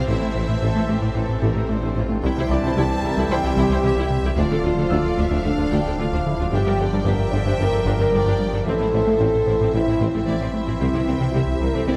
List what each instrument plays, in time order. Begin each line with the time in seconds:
Already playing: detuned saw bass C2, french horn section C4, viola section C4, analog synth pad C4 C5, grand piano G4 G5, violin section C5
0.07 double bass section A1, detuned saw bass A1, tuba A1, analog synth bass A2, cello section A2, trombone section A2 E3, analog synth pad E3 A4, viola section A3, violin section E4 E5, french horn section E4
0.22 analog synth bass A3
0.34 double bass section A1, tuba A1, analog synth bass A2, cello section A2, viola section C3, grand piano C5
0.49 analog synth bass A2, cello section A2, viola section E3
0.62 double bass section A1, tuba A1, analog synth bass A2, cello section A2, viola section A3, violin section A4
0.76 cello section A2, viola section E3, analog synth bass A3
0.89 double bass section A1, tuba A1, cello section A2, viola section C3, analog synth bass A3, violin section G4
1.02 analog synth bass A2, cello section A2, viola section A3
1.15 double bass section A1, tuba A1, analog synth bass A2, cello section A2, viola section E3, violin section A4
1.29 analog synth bass A2
1.42 double bass section A1, tuba A1, analog synth bass A2, cello section A2, viola section A3, grand piano G4, violin section A#4
1.55 analog synth bass A2, cello section A2, viola section E3
1.69 double bass section A1, tuba A1, cello section A2, viola section C3, analog synth bass A3, french horn section D4, violin section C5
1.83 analog synth bass A2, cello section A2, viola section A3
1.96 double bass section A1, tuba A1, analog synth bass A2, cello section A2, viola section E3, french horn section C4, violin section F4
2.09 cello section A2, viola section C3, analog synth bass A3, french horn section D4
2.23 analog synth bass C2, cello section C2, detuned saw bass C2, double bass section C2, tuba C2, trombone section E3 G3, analog synth pad E3 C4 G4 C5, french horn section E4, viola section E4, violin section E5 G5
2.37 cello section C2, analog synth bass C3, viola section E4 C5
2.50 analog synth bass C2, cello section C2, double bass section C2, tuba C2, grand piano D4 D5, viola section E4 G4, violin section A5
2.63 cello section C2, analog synth bass C3, viola section E4 C5
2.76 cello section C2, analog synth bass C2, double bass section C2, tuba C2, viola section E4, french horn section G4
2.90 analog synth bass C2
3.03 cello section C2, analog synth bass C2, double bass section C2, tuba C2, viola section E4 G4, french horn section A#4
3.16 cello section C2, analog synth bass C2, viola section E4, french horn section A4
3.30 cello section C2, analog synth bass C2, tuba C2, double bass section C2, viola section E4 C5, french horn section G4, violin section G5
3.43 cello section C2, analog synth bass C2, viola section E4 G4
3.56 cello section C2, double bass section C2, analog synth bass C2, tuba C2, viola section E4
3.70 cello section C2, analog synth bass C2, viola section E4 C5
3.84 double bass section C2, cello section C2, tuba C2, analog synth bass C3, viola section E4 G4, violin section E5
3.96 cello section C2, analog synth bass C2, viola section E4
4.10 analog synth bass C3
4.23 analog synth bass C2, cello section C2, viola section E4 G4
4.36 detuned saw bass D1, analog synth bass D2, double bass section D2, cello section D2, tuba D2, analog synth pad D3 F3 A4 D5, trombone section D3 F3, viola section D4, french horn section F4, violin section D5 F5
4.51 cello section D2, analog synth bass D3, viola section D4 A4
4.64 double bass section D2, analog synth bass D2, cello section D2, tuba D2, viola section D4 F4, violin section C5
4.77 cello section D2, analog synth bass D3, viola section D4 A4
4.89 analog synth bass D2, tuba D2, cello section D2, double bass section D2, viola section D4, grand piano F4 E6, violin section D5
5.05 analog synth bass D2
5.17 double bass section D2, cello section D2, tuba D2, analog synth bass D2, viola section D4 F4, violin section E5
5.30 analog synth bass D2, cello section D2, viola section D4
5.44 cello section D2, tuba D2, double bass section D2, analog synth bass D2, french horn section D4, viola section D4 A4, violin section F5
5.58 cello section D2, analog synth bass D2, viola section D4 F4
5.71 double bass section D2, cello section D2, analog synth bass D2, tuba D2, viola section D4, violin section G5
5.85 cello section D2, analog synth bass D2, viola section D4 A4
5.98 cello section D2, double bass section D2, tuba D2, analog synth bass D3, viola section D4 F4, french horn section F4, violin section F5
6.11 cello section D2, analog synth bass D2, viola section D4
6.25 analog synth bass D3, french horn section E4
6.38 analog synth bass D2, cello section D2, viola section D4 F4, french horn section F4
6.51 double bass section G1, tuba G1, detuned saw bass G1, cello section G2, analog synth bass G2, viola section D4 G4, french horn section G4, analog synth pad G4, violin section E5 G5
6.66 cello section G2, analog synth bass G3, viola section D4 A#4
6.79 double bass section G1, tuba G1, cello section G2, analog synth bass G2, viola section D4 A4, violin section D5
6.92 cello section G2, analog synth bass G3, viola section D4 A#4
7.04 tuba G1, double bass section G1, analog synth bass G2, cello section G2, viola section D4 G4, french horn section A#4, violin section E5
7.19 analog synth bass G2
7.31 tuba G1, double bass section G1, analog synth bass G2, cello section G2, viola section D4 A4, french horn section D5
7.45 analog synth bass G2, cello section G2, viola section D4 G4, french horn section C5
7.59 tuba G1, double bass section G1, cello section G2, analog synth bass G2, viola section D4 A#4, french horn section A#4
7.72 analog synth bass G2, cello section G2, viola section D4 A4
7.85 tuba G1, double bass section G1, analog synth bass G2, cello section G2, viola section D4 G4
7.99 cello section G2, analog synth bass G2, viola section D4 A#4
8.12 tuba G1, double bass section G1, cello section G2, analog synth bass G3, viola section D4 A4, violin section D5
8.26 analog synth bass G2, cello section G2, viola section D4 G4
8.39 analog synth bass G3
8.52 cello section G2, analog synth bass G2, viola section D4 A4
8.65 detuned saw bass A1, double bass section A1, tuba A1, cello section A2, analog synth bass A2, analog synth pad E3 E4 C5, trombone section C4 E4, viola section C4, french horn section A4, violin section C5 E5
8.79 cello section A2, analog synth bass A3, viola section C4 A4
8.93 tuba A1, double bass section A1, cello section A2, analog synth bass A2, viola section C4 E4
9.06 cello section A2, analog synth bass A3, viola section C4 A4
9.19 double bass section A1, tuba A1, cello section A2, analog synth bass A2, viola section C4
9.35 analog synth bass A2
9.47 tuba A1, double bass section A1, cello section A2, analog synth bass A2, viola section C4 E4
9.59 cello section A2, analog synth bass A2, viola section C4
9.73 double bass section A1, tuba A1, cello section A2, analog synth bass A2, viola section C4 A4, french horn section E4, violin section E5
9.87 cello section A2, analog synth bass A2, viola section C4 E4
10.00 tuba A1, double bass section A1, cello section A2, analog synth bass A2, viola section C4, violin section C5
10.14 cello section A2, analog synth bass A2, viola section C4 A4
10.27 double bass section A1, tuba A1, cello section A2, analog synth bass A3, viola section C4 E4, violin section D5
10.41 analog synth bass A2, cello section A2, viola section C4
10.54 analog synth bass A3, violin section C5
10.67 analog synth bass A2, cello section A2, viola section C4 E4
10.80 analog synth bass C2, detuned saw bass C2, tuba C2, double bass section C2, cello section C3, viola section G3 C4, analog synth pad C4, french horn section E4, violin section E5
10.94 analog synth bass C3, cello section C3, viola section C4 E4
11.07 analog synth bass C2, double bass section C2, tuba C2, cello section C3, viola section C4, violin section G5
11.20 analog synth bass C3, cello section C3, viola section C4 E4
11.33 analog synth bass C2, double bass section C2, tuba C2, cello section C3, viola section G3 C4, french horn section G4, violin section E5
11.47 analog synth bass C2
11.61 analog synth bass C2, double bass section C2, tuba C2, cello section C3, viola section C4, french horn section A#4
11.74 analog synth bass C2, cello section C3, viola section G3 C4, french horn section A4
11.88 analog synth bass C2, tuba C2, double bass section C2, cello section C3, viola section C4 E4, french horn section G4, violin section D5